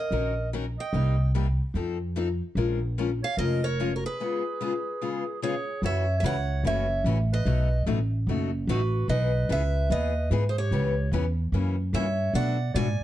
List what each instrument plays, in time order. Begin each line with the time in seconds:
Already playing: clarinet A#4, steel-string acoustic guitar D#5
0.11 upright bass A#1, steel-string acoustic guitar D#3 F#3 C#4 D#4 A#4
0.53 steel-string acoustic guitar D#3 F#3 C#4 D#4 A#4
0.79 clarinet D#5, steel-string acoustic guitar G5
0.93 upright bass C2, steel-string acoustic guitar C3 G3 A#3 D#4 G4
1.35 steel-string acoustic guitar C3 G3 A#3 D#4 G4
1.74 upright bass F2, steel-string acoustic guitar F3 C4 D#4 A4
2.16 steel-string acoustic guitar F3 C4 D#4 A4
2.55 upright bass A#1, steel-string acoustic guitar F3 G#3 C#4 F4 A#4
2.98 steel-string acoustic guitar F3 G#3 C#4 F4 A#4
3.23 clarinet C#5, steel-string acoustic guitar F5
3.37 upright bass F1, steel-string acoustic guitar F3 G#3 C#4 F4 A#4 D#5, clarinet A#4
3.63 clarinet A#4, steel-string acoustic guitar C#5
3.80 steel-string acoustic guitar F3 G#3 C#4 F4 A#4
3.95 clarinet F#4, steel-string acoustic guitar A#4
4.06 clarinet G#4, steel-string acoustic guitar B4
4.20 steel-string acoustic guitar C#3 G#3 B3 F4 G#4
4.61 steel-string acoustic guitar C#3 G#3 B3 F4 G#4
5.02 steel-string acoustic guitar C#3 G#3 B3 F4 G#4
5.42 steel-string acoustic guitar C#3 G#3 B3 F4 G#4 C#5, clarinet G#4
5.82 upright bass F#2, steel-string acoustic guitar C#3 E3 A3 C#4 F#4 E5, clarinet C#5
6.17 clarinet C#5, steel-string acoustic guitar E5
6.23 upright bass C#2, steel-string acoustic guitar C#3 E3 A3 C#4 F#4 F#5, clarinet C#5
6.64 upright bass F#1, steel-string acoustic guitar C#3 E3 A3 C#4 F#4 E5, clarinet C#5
7.04 upright bass A1, steel-string acoustic guitar C#3 E3 A3 C#4 F#4
7.32 clarinet B4, steel-string acoustic guitar D#5
7.45 upright bass B1, steel-string acoustic guitar B2 F#3 A3 D#4 F#4
7.86 upright bass A1, steel-string acoustic guitar B2 F#3 A3 D#4 F#4
8.27 upright bass F#1, steel-string acoustic guitar B2 F#3 A3 D#4 F#4
8.67 upright bass A1, steel-string acoustic guitar B2 F#3 A3 D#4 F#4 B4, clarinet F#4
9.08 upright bass B1, steel-string acoustic guitar E3 B3 D#4 G#4 D#5, clarinet B4
9.49 upright bass C#2, steel-string acoustic guitar E3 B3 D#4 G#4 E5, clarinet B4
9.90 upright bass D#2, steel-string acoustic guitar E3 B3 D#4 G#4 D#5, clarinet B4
10.31 upright bass G#2, steel-string acoustic guitar E3 B3 D#4 G#4
10.49 clarinet G#4, steel-string acoustic guitar C5
10.58 clarinet G4, steel-string acoustic guitar C#5
10.71 upright bass C#2, steel-string acoustic guitar C#3 E3 B3 C#4 G4
11.11 upright bass E2, steel-string acoustic guitar C#3 E3 B3 C#4 G4
11.52 upright bass F#2, steel-string acoustic guitar C#3 E3 A#3 C#4 F#4
11.93 upright bass G2, steel-string acoustic guitar C#3 E3 A#3 C#4 F#4 E5, clarinet C#5
12.33 upright bass B2, steel-string acoustic guitar B2 F#3 A3 D4 F#4 F#5, clarinet D5
12.74 upright bass G#2, steel-string acoustic guitar B2 F#3 A3 D4 F#4 G#5, clarinet D5
13.00 muted upright bass stroke